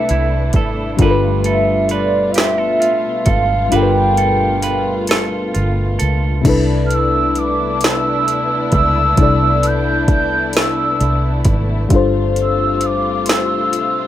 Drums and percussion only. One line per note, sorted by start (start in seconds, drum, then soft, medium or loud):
0.09 closed hi-hat medium
0.53 kick medium
0.53 closed hi-hat medium
0.99 kick loud
0.99 closed hi-hat medium
1.44 closed hi-hat medium
1.89 closed hi-hat soft
2.34 snare loud
2.34 closed hi-hat medium
2.82 closed hi-hat soft
3.26 kick medium
3.26 closed hi-hat soft
3.72 closed hi-hat medium
4.17 closed hi-hat medium
4.62 closed hi-hat medium
5.07 snare loud
5.07 closed hi-hat medium
5.55 closed hi-hat soft
6.00 closed hi-hat soft
6.45 kick loud
6.45 closed hi-hat medium
6.45 crash loud
6.91 closed hi-hat medium
7.36 closed hi-hat medium
7.81 snare loud
7.81 closed hi-hat medium
8.28 closed hi-hat medium
8.72 kick medium
8.72 closed hi-hat soft
9.17 kick loud
9.17 closed hi-hat medium
9.63 closed hi-hat medium
10.08 kick loud
10.08 closed hi-hat medium
10.53 snare loud
10.53 closed hi-hat medium
11.01 closed hi-hat medium
11.45 kick medium
11.45 closed hi-hat soft
11.90 kick loud
11.90 closed hi-hat medium
12.36 closed hi-hat medium
12.81 closed hi-hat medium
13.26 snare loud
13.26 closed hi-hat medium
13.73 closed hi-hat medium